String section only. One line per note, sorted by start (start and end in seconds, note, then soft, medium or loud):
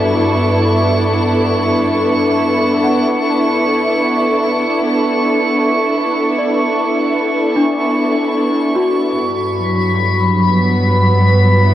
0.00 2.84 G2 medium
0.00 9.17 B3 medium
0.00 9.16 D4 medium
0.00 9.16 E4 medium
0.00 9.16 A4 medium
9.13 11.74 G2 medium
9.59 11.74 F#3 medium
10.47 11.74 B3 medium
11.64 11.74 E4 medium